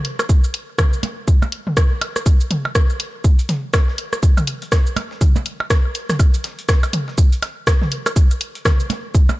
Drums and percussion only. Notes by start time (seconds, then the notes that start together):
0.05 closed hi-hat
0.19 cross-stick, cabasa, percussion blips
0.29 kick, cabasa
0.44 cabasa
0.54 closed hi-hat
0.78 kick, cross-stick, high tom, cabasa, percussion blips
0.93 cabasa
1.03 closed hi-hat, percussion blips
1.28 kick, cabasa
1.42 percussion blips, cabasa
1.52 closed hi-hat
1.67 high tom
1.77 kick, cross-stick, cabasa
2.01 closed hi-hat, percussion blips
2.16 cross-stick, cabasa
2.26 kick, cabasa
2.41 cabasa
2.51 closed hi-hat, high tom
2.65 percussion blips
2.75 kick, cross-stick, cabasa
2.90 cabasa
3.00 closed hi-hat
3.24 kick, cabasa, shaker
3.39 closed hi-hat, cabasa
3.49 snare, closed hi-hat, high tom, shaker
3.74 kick, cross-stick, snare, cabasa, percussion blips, shaker
3.88 snare
3.98 closed hi-hat, shaker
4.13 cross-stick, cabasa
4.23 kick, cabasa, shaker
4.37 high tom, cabasa, percussion blips
4.47 closed hi-hat, shaker
4.62 closed hi-hat
4.72 kick, cross-stick, snare, cabasa, shaker
4.87 cabasa
4.97 closed hi-hat, percussion blips, shaker
5.11 snare
5.21 kick, high tom, cabasa, shaker
5.36 percussion blips, cabasa
5.46 closed hi-hat, shaker
5.60 percussion blips
5.70 kick, cross-stick, snare, cabasa, shaker
5.95 closed hi-hat, shaker
6.09 cross-stick, snare, high tom, cabasa
6.19 kick, cabasa, percussion blips, shaker
6.34 closed hi-hat, cabasa
6.44 snare, closed hi-hat, shaker
6.59 closed hi-hat
6.69 kick, cross-stick, snare, cabasa, shaker
6.83 closed hi-hat, cabasa, percussion blips
6.93 closed hi-hat, high tom, shaker
7.08 snare
7.18 kick, cabasa, shaker
7.32 closed hi-hat, cabasa
7.42 snare, closed hi-hat, percussion blips, shaker
7.67 kick, cross-stick, snare, cabasa, shaker
7.82 snare, high tom
7.92 closed hi-hat, shaker
8.06 cross-stick, cabasa, percussion blips
8.16 kick, cabasa, shaker
8.31 cabasa
8.41 closed hi-hat, shaker
8.55 closed hi-hat
8.65 kick, cross-stick, snare, high tom, cabasa, percussion blips, shaker
8.80 cabasa
8.90 snare, closed hi-hat, percussion blips, shaker
9.15 kick, cabasa, shaker
9.29 percussion blips, cabasa